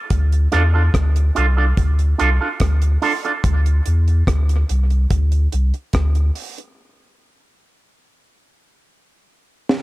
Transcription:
0.10 sub bass D2, kick, closed hi-hat
0.32 closed hi-hat
0.52 sub bass E2, clean electric guitar D4 F4 A4, cross-stick, closed hi-hat
0.74 clean electric guitar D4 F4 A4
0.94 sub bass D2, kick, cross-stick, closed hi-hat
1.16 closed hi-hat
1.35 sub bass C2, clean electric guitar D4 F4 A4, closed hi-hat
1.57 clean electric guitar D4 F4 A4
1.77 sub bass D2, kick, closed hi-hat
1.99 closed hi-hat
2.18 sub bass C2, clean electric guitar D4 F4 A4, closed hi-hat
2.41 clean electric guitar D4 F4 A4
2.60 sub bass D2, kick, cross-stick, closed hi-hat
2.82 closed hi-hat
3.02 clean electric guitar D4 F4 A4, open hi-hat
3.25 clean electric guitar D4 F4 A4, closed hi-hat
3.44 sub bass D2, kick, closed hi-hat
3.66 closed hi-hat
3.86 sub bass E2, closed hi-hat
4.08 closed hi-hat
4.27 sub bass D2, kick, cross-stick, closed hi-hat
4.49 closed hi-hat
4.69 sub bass C2, closed hi-hat
4.90 closed hi-hat
5.11 sub bass D2, kick, closed hi-hat
5.32 closed hi-hat
5.52 sub bass C2, closed hi-hat
5.74 closed hi-hat
5.93 sub bass D2, kick, cross-stick, closed hi-hat
6.15 closed hi-hat
6.35 open hi-hat
6.58 closed hi-hat
9.69 snare

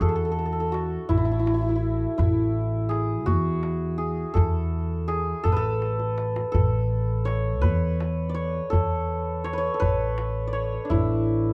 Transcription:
Already playing: santur D4 E4 F#4
0.01 upright bass E2, santur A4, tombak dum
0.09 santur A4
0.16 santur A4
0.25 santur A4
0.32 santur A4
0.39 santur A4
0.46 santur A4
0.53 santur A4
0.60 santur A4
0.72 santur F#4, tombak tek
1.09 upright bass A1, santur E4, tombak dum
1.17 santur E4
1.25 santur E4
1.32 santur E4
1.39 santur E4
1.46 santur E4, tombak tek
1.54 santur E4
1.61 santur E4
1.69 santur E4
1.76 santur E4
2.01 tombak ka
2.18 upright bass A1, santur E4, tombak dum
2.89 santur G#4, tombak tek
3.26 upright bass E2, santur F#4, tombak dum
3.63 tombak tek
3.98 santur G#4
4.18 tombak ka
4.34 upright bass E2, santur A4, tombak dum
4.91 tombak ka
5.08 santur G#4, tombak tek
5.44 upright bass A1, santur A4, tombak dum
5.52 santur B4
5.56 santur A4
5.82 tombak tek
6.00 tombak ka
6.18 tombak tek
6.36 tombak ka
6.52 upright bass A1, santur A4, tombak dum
7.25 santur C#5, tombak tek
7.61 upright bass E2, santur B4, tombak dum
8.00 tombak tek
8.29 santur D5
8.34 santur C#5
8.55 tombak ka
8.70 upright bass E2, santur A4, tombak dum
9.44 santur C#5, tombak tek
9.53 santur B4
9.58 santur C#5
9.74 santur A4
9.80 upright bass A1, santur B4, tombak dum
10.18 tombak tek
10.47 santur D5
10.53 santur C#5
10.73 tombak ka
10.85 santur D4
10.90 upright bass A1, santur E4, tombak dum

